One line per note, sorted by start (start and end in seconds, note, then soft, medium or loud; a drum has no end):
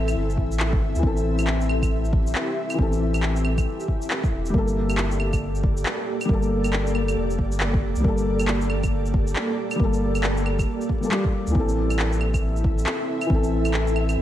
0.00 0.15 A1 medium
0.00 0.34 E3 medium
0.00 0.36 C4 medium
0.00 4.50 C4 medium
0.00 4.50 E4 medium
0.00 0.38 A4 loud
0.00 1.00 A4 medium
0.00 4.50 E5 medium
0.08 claves medium
0.08 shaker medium
0.16 0.37 G1 medium
0.30 shaker soft
0.38 0.84 A1 loud
0.38 kick medium
0.52 shaker medium
0.60 clap loud
0.73 kick loud
0.82 0.94 G1 medium
0.95 1.03 D2 medium
0.95 2.09 E3 medium
0.95 shaker medium
1.03 2.34 A1 loud
1.03 2.11 C4 medium
1.03 11.51 G4 medium
1.03 2.13 A4 loud
1.03 kick loud
1.17 shaker soft
1.39 claves medium
1.39 shaker medium
1.47 clap loud
1.61 shaker soft
1.69 claves medium
1.82 kick medium
1.82 claves medium
1.82 shaker medium
2.05 shaker soft
2.13 kick loud
2.27 shaker medium
2.35 clap loud
2.70 3.84 E3 medium
2.70 claves medium
2.70 shaker medium
2.78 3.65 A1 loud
2.78 3.86 C4 medium
2.78 kick loud
2.82 3.88 A4 loud
2.92 shaker soft
3.14 claves medium
3.14 shaker medium
3.23 clap loud
3.36 shaker soft
3.45 claves medium
3.58 kick medium
3.58 claves medium
3.58 shaker medium
3.80 shaker soft
3.88 kick medium
4.02 shaker medium
4.10 clap loud
4.24 kick loud
4.24 shaker soft
4.33 4.53 E1 medium
4.46 shaker medium
4.50 5.59 G3 medium
4.50 11.51 A#3 medium
4.50 5.61 A#3 medium
4.50 11.51 A4 medium
4.50 11.51 D5 medium
4.54 5.84 G1 loud
4.54 5.63 A4 loud
4.54 kick loud
4.68 shaker soft
4.90 claves medium
4.90 shaker medium
4.98 clap loud
5.11 shaker soft
5.20 claves medium
5.33 kick medium
5.33 claves medium
5.33 shaker medium
5.55 shaker soft
5.63 kick loud
5.77 shaker medium
5.86 clap loud
6.21 claves medium
6.21 shaker medium
6.25 7.16 G1 loud
6.25 7.35 G3 loud
6.25 kick loud
6.29 7.37 A#3 medium
6.29 7.39 A4 loud
6.42 shaker soft
6.64 claves medium
6.64 shaker medium
6.73 clap loud
6.87 shaker soft
6.95 claves medium
7.08 claves medium
7.08 shaker medium
7.17 7.38 F1 medium
7.30 shaker soft
7.39 7.85 G1 loud
7.39 kick medium
7.52 shaker medium
7.60 clap loud
7.74 kick loud
7.83 7.95 F1 medium
7.96 8.04 C2 medium
7.96 shaker medium
8.00 9.10 G3 medium
8.00 9.12 A#3 medium
8.04 9.35 G1 loud
8.04 9.14 A4 loud
8.04 kick loud
8.18 shaker soft
8.40 claves medium
8.40 shaker medium
8.48 clap loud
8.61 shaker soft
8.70 claves medium
8.84 kick medium
8.84 claves medium
8.84 shaker medium
9.06 shaker soft
9.14 kick loud
9.27 shaker medium
9.36 clap loud
9.71 claves medium
9.71 shaker medium
9.76 10.85 G3 loud
9.76 10.87 A#3 medium
9.76 kick loud
9.80 10.66 G1 loud
9.84 10.89 A4 loud
9.93 shaker soft
10.15 claves medium
10.15 shaker medium
10.23 clap loud
10.37 shaker soft
10.46 claves soft
10.59 kick medium
10.59 claves medium
10.59 shaker medium
10.81 shaker soft
10.89 kick medium
11.01 11.08 G3 medium
11.01 11.10 A#3 medium
11.01 shaker medium
11.05 11.11 A4 medium
11.09 11.52 G3 medium
11.09 11.53 A#3 medium
11.09 clap loud
11.14 11.54 G4 loud
11.25 kick loud
11.47 11.54 D2 medium
11.47 shaker medium
11.51 12.85 A1 loud
11.51 12.61 E3 loud
11.51 14.22 C4 medium
11.51 14.22 E4 medium
11.51 14.22 A4 medium
11.51 14.22 E5 medium
11.51 kick loud
11.55 12.63 C4 medium
11.59 12.65 A4 loud
11.69 shaker soft
11.90 claves medium
11.90 shaker medium
11.99 clap loud
12.12 shaker soft
12.21 claves soft
12.34 kick medium
12.34 claves medium
12.34 shaker medium
12.56 shaker soft
12.64 kick loud
12.78 shaker medium
12.86 clap loud
13.21 claves medium
13.21 shaker medium
13.26 14.16 A1 loud
13.26 14.22 E3 medium
13.26 kick loud
13.30 14.22 C4 medium
13.34 14.22 A4 loud
13.43 shaker soft
13.65 claves medium
13.65 shaker medium
13.74 clap loud
13.87 shaker soft
13.96 claves medium
14.09 claves medium
14.09 shaker medium
14.18 14.22 G1 medium